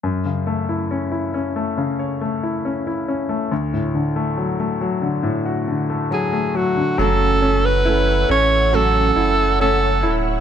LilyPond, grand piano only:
\new Staff \with { instrumentName = "Grand piano" } { \time 4/4 \key fis \minor \tempo 4 = 69 fis,16 cis16 a16 e'16 cis'16 e'16 cis'16 a16 cis16 cis''16 a16 e'16 cis'16 e'16 cis'16 a16 | d,16 a,16 d16 a16 fis16 a16 fis16 d16 a,16 fis'16 d16 a16 fis16 a16 fis16 d16 | fis8 cis'8 e'8 cis'8 fis8 e'8 cis'8 e'8 | }